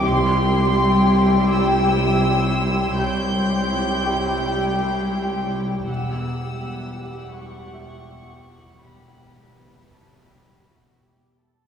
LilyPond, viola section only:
\new Staff \with { instrumentName = "Viola section" } { \time 4/4 \key c \dorian \tempo 4 = 82 <g e'>1 | <g e'>1 | <g e'>1 | <g e'>2.~ <g e'>8 r8 | }